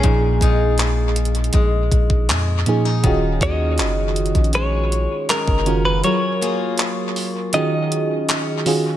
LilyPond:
<<
  \new Staff \with { instrumentName = "Clean electric guitar" } { \time 4/4 \key ees \minor \tempo 4 = 80 gis'4.~ gis'16 r2 r16 | r8 ees''4. des''4 bes'8. ces''16 | des''2 ees''4. r8 | }
  \new Staff \with { instrumentName = "FM electric piano" } { \time 4/4 \key ees \minor <bes, f ees' aes'>4. r2 <bes, f ees' aes'>8 | <ees des' f' ges' aes'>4. r2 <ees des' f' ges' bes'>8 | <ges f' aes' bes'>4. r8 <ees des' f' ges' aes'>4 r8 <ees des' f' ges' aes'>8 | }
  \new Staff \with { instrumentName = "Steel-string acoustic guitar" } { \time 4/4 \key ees \minor bes,8 <aes ees' f'>4. aes4 aes8 des'16 ees'16 | ees8 <aes des' ges'>4. aes4 aes8 des'8 | ges8 <bes f' aes'>4. ees4 des'8 ges'8 | }
  \new Staff \with { instrumentName = "808-style bass" } { \clef bass \time 4/4 \key ees \minor bes,,8 bes,,4. bes,,8 bes,,8 f,8 r8 | ees,,8 ees,8 ges,,8. bes,,4 r8 ges,,8. | r1 | }
  \new DrumStaff \with { instrumentName = "Drums" } \drummode { \time 4/4 <hh bd>8 <hh bd>8 <hc hh>8 <hh hho>32 hh32 hh32 hh32 <hh bd>8 <hh bd>16 bd16 <hc hh>8 hh8 | <hh bd>8 <hh bd>8 <hc hh>8 <hh hho>32 hh32 <hh bd>32 hh32 hh8 hh8 <hc hh>16 bd16 hh8 | hh8 hh8 <hc hh>8 hho8 hh8 hh8 <hc hh>8 hho8 | }
>>